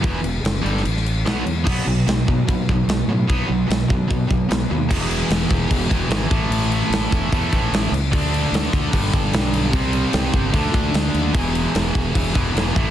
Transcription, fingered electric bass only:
X:1
M:4/4
L:1/8
Q:1/4=149
K:Em
V:1 name="Fingered electric bass" clef=bass
E,,, E,,, F,,, G,,, A,,,2 B,,, E,, | B,,, B,,, B,,, B,, B,, B,,, B,,, A,, | B,,, B,,, B,,, B,, B,, B,,, B,,, ^D,, | E,,,2 E,,, E,,, E,,, E,,, ^G,,, A,,, |
A,,,2 A,,, E,,, E,, A,,, A,,, ^C,, | D,,2 D,, D,, G,,, G,,, B,,,2 | C,,2 C,, G,,, D,, D,, D,, ^D,, | E,,,2 E,,, E,,, E,,, E,,, E,,, A,,, |]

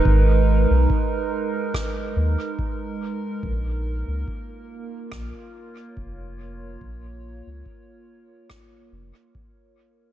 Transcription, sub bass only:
X:1
M:4/4
L:1/16
Q:"Swing 16ths" 1/4=71
K:A#phr
V:1 name="Sub bass" clef=bass
G,,,3 B,,, z6 D,, z4 z | A,,,3 C,, z4 A,,, z3 E,,,4 | A,,,3 C,, z6 E,,, z4 z |]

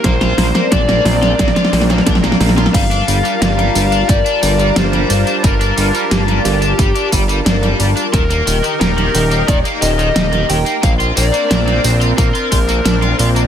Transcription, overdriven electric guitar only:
X:1
M:4/4
L:1/16
Q:1/4=89
K:Gm
V:1 name="Overdriven electric guitar"
B, F B, B, D B, B, F B, F B, B, D B, B, F | G, D G, G, B, G, G, D G, D G, G, B, G, G, D | G, D G, G, B, G, G, D G, D G, G, B, G, G, D | E, B, E, E, G, E, E, B, E, B, E, E, G, E, E, B, |
B, F B, B, D B, B, F B, F F B, D F F B, |]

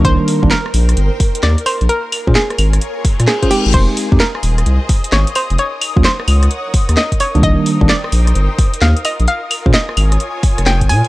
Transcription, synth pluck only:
X:1
M:4/4
L:1/8
Q:"Swing 16ths" 1/4=130
K:Bbdor
V:1 name="Synth pluck"
c z B z3 =d c | B z A z3 A G | c z B z3 d c | d z c z3 e d |
e z =d z3 f e | f z e z3 g a |]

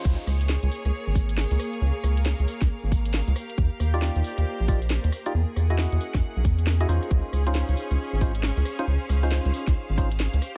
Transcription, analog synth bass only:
X:1
M:4/4
L:1/16
Q:"Swing 16ths" 1/4=136
K:Db
V:1 name="Analog synth bass" clef=bass
D,, z D,,3 D,, z D,, z A,,,4 D,, z2 | D,, z D,,3 D,, z D,, z A,,,4 D,, z2 | E,, z E,,3 E,, z E,, z B,,,4 E,, z2 | =E,, z E,,3 E,, z E,, z =B,,, E,,4 E,, z |
D,, z D,,3 D,, z D,, z A,,,4 D,, z2 | D,, z D,,3 D,, z D,, z A,,,4 D,, z2 |]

